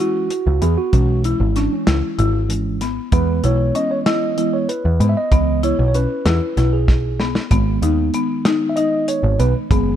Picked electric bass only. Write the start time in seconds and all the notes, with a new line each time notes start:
0.47 C#2
0.62 E2
0.93 B1
1.40 G#1
1.88 C#2
2.19 G#1
3.13 E2
3.44 B1
4.85 E2
5.00 G#2
5.32 C#2
5.79 B1
6.26 E2
6.57 B1
7.51 G#1
7.82 D#2
9.23 G#1
9.39 B1
9.71 F#1